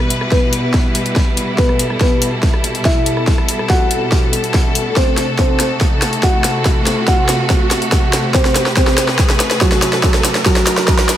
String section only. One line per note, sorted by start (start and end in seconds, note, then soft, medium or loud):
0.00 4.92 B2 medium
0.00 4.92 G3 medium
0.00 4.92 E4 medium
0.00 1.55 B4 medium
1.58 8.30 A4 medium
4.96 11.17 C3 medium
4.96 11.17 A3 medium
4.96 11.17 F#4 medium
8.34 11.17 B4 medium